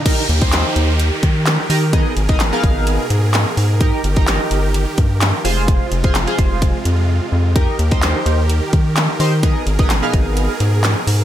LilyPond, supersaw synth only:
\new Staff \with { instrumentName = "Supersaw synth" } { \time 4/4 \key ees \major \tempo 4 = 128 << { bes'1~ | bes'1~ | bes'2.~ bes'8 aes8~ | aes1 |
bes'1~ | bes'1 | } \\ { <ees g'>1 | <ces aes'>1 | <ees g'>2.~ <ees g'>8 <c f'>8~ | <c f'>1 |
<ees g'>1 | <ces aes'>1 | } >> }